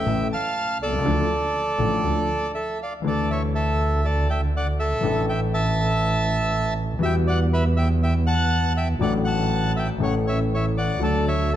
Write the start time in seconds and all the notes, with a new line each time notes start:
Already playing: E5 G5
0.05 A1 A2 E3 A3 C#4 A4
0.33 F5 A5
0.79 C2 A4 D5
0.85 B1
0.92 C2
0.98 C#2
1.04 D2 D3 F3 A3 D4 A4
1.78 A1 A2 F3 A3 D4 A4
2.04 D2 D3 F3 A3 D4 A4
2.55 A4 E5
2.82 D5 F5
3.02 D2 D3 E3 A3 D4 A4
3.07 A4 D5
3.30 C#5 E5
3.55 A4 E5
4.05 A4 D5
4.30 E5 G5
4.57 D5 F#5
4.79 A4 E5
5.01 A1 A2 E3 A3 D4
5.05 A4
5.29 E5 G5
5.54 E5 A5
6.99 E2 E3 G3 B3 F#4 E5
7.05 G5
7.27 D5 F#5
7.53 B4 E5
7.77 E5 G5
8.03 E5 G5
8.26 F#5 A5
8.77 E5 G5
8.99 A1 A2 F#3 A3 D4 A4 D5
9.03 F#5
9.25 F#5 A5
9.76 E5 G5
9.98 A1 A2 E3 A3 C#4 A4
10.03 C#5 F#5
10.27 C#5 E5
10.54 C#5 E5
10.78 D5 F#5
10.99 D2 D3 F#3 A3 D4 A4
11.03 A4 D5
11.28 C#5 E5